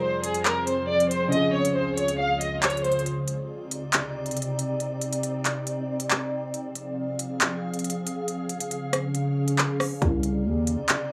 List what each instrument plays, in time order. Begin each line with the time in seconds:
Already playing: ambient pad F2 F3 C4 G#4, grand piano F3 F4 G#4 C5
0.02 violin section C5
0.24 violin section G#4, closed hi-hat
0.34 closed hi-hat
0.45 violin section A#4, clap
0.67 violin section C5, closed hi-hat
0.89 violin section D5
1.00 closed hi-hat
1.11 violin section C5, closed hi-hat
1.28 ambient pad C#2 C#3 F4, grand piano C#3 C#4, violin section D#5
1.32 grand piano F4, closed hi-hat
1.36 grand piano G#4
1.54 violin section C#5
1.65 closed hi-hat
1.75 violin section C5
1.97 violin section C#5, closed hi-hat
2.08 closed hi-hat
2.19 violin section F5
2.41 violin section D#5, closed hi-hat
2.63 violin section C#5, clap, closed hi-hat
2.70 closed hi-hat
2.77 closed hi-hat
2.84 violin section C5, closed hi-hat
2.92 closed hi-hat
2.99 closed hi-hat
3.06 ambient pad C3 C4 D#4 D5, closed hi-hat
3.28 closed hi-hat
3.71 closed hi-hat
3.93 clap, closed hi-hat
4.26 closed hi-hat
4.31 closed hi-hat
4.37 closed hi-hat
4.42 closed hi-hat
4.59 closed hi-hat
4.80 closed hi-hat
5.01 closed hi-hat
5.13 closed hi-hat
5.23 closed hi-hat
5.45 clap, closed hi-hat
5.67 closed hi-hat
6.00 closed hi-hat
6.10 clap
6.54 ambient pad F3 G#4 F5, closed hi-hat
6.75 closed hi-hat
7.19 closed hi-hat
7.41 clap, closed hi-hat
7.74 closed hi-hat
7.79 closed hi-hat
7.84 closed hi-hat
7.90 closed hi-hat
8.07 closed hi-hat
8.28 ambient pad C#3 C#4, closed hi-hat
8.49 closed hi-hat
8.60 closed hi-hat
8.71 closed hi-hat
8.93 cross-stick, closed hi-hat
9.15 closed hi-hat
9.48 closed hi-hat
9.58 clap
9.80 cross-stick, open hi-hat
10.02 808-style bass C2, ambient pad C3 C4 D#4 D5, kick, closed hi-hat
10.23 closed hi-hat
10.45 808-style bass D#2
10.67 closed hi-hat
10.89 clap, closed hi-hat